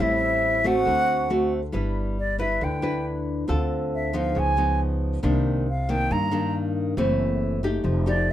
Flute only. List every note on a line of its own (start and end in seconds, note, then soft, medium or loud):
0.02 0.68 E5 medium
0.67 1.53 F#5 loud
2.20 2.39 D5 medium
2.40 2.65 E5 medium
2.64 3.06 G5 medium
3.95 4.18 E5 medium
4.16 4.40 F5 medium
4.39 4.81 G#5 medium
5.70 5.91 F5 medium
5.90 6.14 G5 medium
6.12 6.55 A#5 medium
8.08 8.33 D5 medium